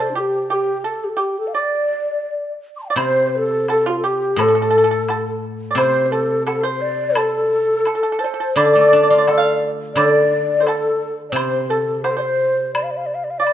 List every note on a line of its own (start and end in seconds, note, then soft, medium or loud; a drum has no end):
0.00 0.84 C3 medium
0.00 0.15 A4 medium
0.00 0.10 A4 medium
0.00 0.17 C5 medium
0.11 0.14 D4 soft
0.15 0.20 F4 soft
0.15 0.48 G4 medium
0.15 0.52 G4 medium
0.15 0.22 A4 medium
0.21 0.49 G4 medium
0.50 0.83 G4 medium
0.50 0.84 G4 medium
0.50 0.55 A4 medium
0.54 0.87 G4 medium
0.84 1.14 A4 medium
0.84 1.06 A4 medium
0.84 1.07 A4 medium
1.04 1.16 G4 medium
1.04 1.11 G4 medium
1.09 1.20 A4 medium
1.17 1.52 G4 medium
1.17 1.40 G4 medium
1.17 1.39 G4 medium
1.38 1.49 A4 medium
1.38 1.55 A4 medium
1.47 1.56 F5 soft
1.54 2.61 D5 medium
1.54 2.57 D5 medium
1.54 2.51 D5 medium
2.76 2.82 C6 soft
2.76 2.78 D6 soft
2.82 2.88 G5 soft
2.82 2.85 A5 soft
2.89 2.96 D5 soft
2.89 2.93 F5 soft
2.93 4.39 C3 medium
2.93 3.65 C5 medium
2.93 2.98 D5 soft
2.97 3.31 C5 medium
2.97 3.27 C5 loud
2.97 high woodblock medium
3.27 3.38 C5 medium
3.34 3.71 A4 medium
3.34 3.39 C5 medium
3.38 3.67 A4 medium
3.68 3.86 A4 medium
3.68 3.92 A4 medium
3.68 high woodblock soft
3.68 low woodblock soft
3.86 4.03 F4 medium
3.86 4.06 F4 medium
3.90 3.99 F4 medium
3.99 4.07 A4 medium
4.04 4.37 G4 medium
4.04 4.42 G4 medium
4.04 4.43 G4 medium
4.36 5.77 A2 medium
4.36 4.46 A4 medium
4.36 4.45 C5 medium
4.36 high woodblock medium
4.41 5.45 A4 medium
4.41 5.44 A4 medium
4.48 4.54 A4 medium
4.55 4.61 A4 medium
4.62 4.69 A4 soft
4.70 4.77 A4 medium
4.78 4.83 A4 medium
4.84 4.90 A4 medium
4.91 4.98 A4 medium
5.09 5.42 A4 medium
5.09 high woodblock soft
5.09 low woodblock soft
5.71 5.78 D5 medium
5.75 7.85 C3 medium
5.75 6.06 C5 loud
5.75 6.10 C5 medium
5.75 6.13 C5 medium
5.75 high woodblock medium
6.06 6.13 C5 medium
6.11 6.46 A4 medium
6.11 6.45 A4 medium
6.11 6.17 C5 medium
6.16 6.47 A4 medium
6.46 6.66 A4 medium
6.46 6.63 A4 medium
6.46 6.67 A4 medium
6.46 high woodblock soft
6.46 low woodblock soft
6.63 7.12 C5 medium
6.63 6.82 C5 medium
6.63 6.83 C5 medium
6.81 7.18 D5 loud
6.81 7.20 D5 medium
7.15 7.82 A4 medium
7.15 8.22 A4 medium
7.15 7.24 C5 medium
7.15 high woodblock medium
7.23 8.24 A4 medium
7.85 7.94 A4 medium
7.85 high woodblock soft
7.95 8.01 A4 soft
8.03 8.09 A4 soft
8.12 8.18 A4 soft
8.19 8.23 A4 medium
8.19 8.57 C5 medium
8.23 8.31 A4 medium
8.23 8.28 D5 medium
8.27 8.58 C5 medium
8.34 8.39 A4 medium
8.40 8.47 A4 medium
8.56 9.94 D3 medium
8.56 9.70 D5 medium
8.56 8.64 D5 medium
8.56 9.68 D5 medium
8.56 high woodblock medium
8.65 8.72 D5 medium
8.73 10.15 A3 soft
8.73 8.79 D5 soft
8.81 8.87 D5 soft
8.88 8.95 D5 soft
8.93 10.32 D4 soft
8.93 9.02 D5 soft
9.03 9.09 D5 soft
9.10 10.50 F4 soft
9.10 9.17 D5 soft
9.18 9.25 D5 medium
9.28 10.67 A4 soft
9.28 high woodblock soft
9.28 low woodblock soft
9.38 9.69 F5 medium
9.93 12.04 D3 medium
9.93 10.64 D5 medium
9.93 high woodblock medium
9.97 10.10 C#5 medium
9.97 10.56 D5 medium
10.10 10.68 D5 medium
10.60 11.16 A4 medium
10.60 10.67 C5 medium
10.67 11.18 A4 medium
10.67 11.16 A4 medium
10.67 high woodblock soft
10.67 low woodblock soft
11.29 13.45 C3 medium
11.29 11.72 C5 medium
11.29 11.34 D5 medium
11.35 11.68 C5 medium
11.35 11.72 C5 medium
11.35 high woodblock medium
11.70 12.04 A4 medium
11.70 12.02 A4 medium
11.70 12.04 A4 medium
12.04 12.13 C5 medium
12.04 12.17 C5 medium
12.04 12.16 C5 medium
12.04 high woodblock soft
12.04 low woodblock soft
12.11 12.20 A4 medium
12.17 12.70 C5 medium
12.17 12.74 C5 medium
12.17 12.22 D5 medium
12.21 12.70 C5 medium
12.74 12.85 D5 medium
12.74 high woodblock medium
12.83 12.93 F5 medium
12.91 12.99 D5 medium
12.97 13.08 F5 medium
13.06 13.16 D5 medium
13.15 13.26 F5 medium
13.24 13.32 D5 medium
13.30 13.40 F5 medium
13.38 13.53 D5 medium
13.38 13.46 F5 medium
13.45 13.53 D5 medium
13.45 high woodblock soft